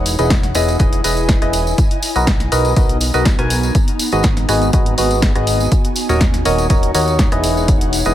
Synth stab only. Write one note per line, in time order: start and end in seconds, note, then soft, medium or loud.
0.00 0.16 E4 medium
0.00 0.16 G#4 medium
0.00 0.16 B4 medium
0.00 0.16 D#5 medium
0.19 0.34 E4 medium
0.19 0.34 G#4 medium
0.19 0.34 B4 medium
0.19 0.34 D#5 loud
0.55 0.77 E4 medium
0.55 0.77 G#4 medium
0.55 0.77 B4 medium
0.55 0.77 D#5 loud
0.80 1.01 E4 medium
0.80 1.01 G#4 medium
0.80 1.01 B4 medium
0.80 1.01 D#5 medium
1.04 1.39 E4 medium
1.04 1.39 G#4 medium
1.04 1.39 B4 medium
1.04 1.39 D#5 medium
1.42 1.77 E4 medium
1.42 1.77 G#4 medium
1.42 1.77 B4 medium
1.42 1.77 D#5 medium
2.16 2.31 F#4 medium
2.16 2.31 A#4 medium
2.16 2.31 B4 medium
2.16 2.31 D#5 loud
2.52 2.74 F#4 medium
2.52 2.74 A#4 medium
2.52 2.74 B4 medium
2.52 2.74 D#5 loud
2.77 2.98 F#4 medium
2.77 2.98 A#4 medium
2.77 2.98 B4 medium
2.77 2.98 D#5 medium
3.14 3.29 F#4 loud
3.14 3.29 A#4 medium
3.14 3.29 B4 medium
3.14 3.29 D#5 loud
3.39 3.74 F#4 medium
3.39 3.74 A#4 medium
3.39 3.74 B4 medium
3.39 3.74 G#5 loud
4.13 4.28 F#4 medium
4.13 4.28 G#4 medium
4.13 4.28 B4 medium
4.13 4.28 D#5 loud
4.49 4.71 F#4 medium
4.49 4.71 G#4 medium
4.49 4.71 B4 medium
4.49 4.71 D#5 loud
4.73 4.94 F#4 medium
4.73 4.94 G#4 medium
4.73 4.94 B4 medium
4.73 4.94 D#5 medium
4.98 5.32 F#4 medium
4.98 5.32 G#4 medium
4.98 5.32 B4 medium
4.98 5.32 D#5 medium
5.35 5.70 F#4 medium
5.35 5.70 G#4 medium
5.35 5.70 B4 medium
5.35 5.70 D#5 medium
6.09 6.24 F#4 medium
6.09 6.24 A#4 medium
6.09 6.24 C#5 medium
6.09 6.24 D#5 medium
6.45 6.67 F#4 loud
6.45 6.67 A#4 medium
6.45 6.67 C#5 medium
6.45 6.67 D#5 loud
6.70 6.91 F#4 medium
6.70 6.91 A#4 medium
6.70 6.91 C#5 medium
6.70 6.91 D#5 medium
6.95 7.29 F#4 medium
6.95 7.29 A#4 medium
6.95 7.29 C#5 medium
6.95 7.29 D#5 medium
7.32 8.03 E4 medium
7.32 8.03 G#4 medium
7.32 8.03 B4 medium
7.32 8.03 D#5 medium
8.06 8.14 E4 medium
8.06 8.14 G#4 medium
8.06 8.14 B4 medium
8.06 8.14 D#5 loud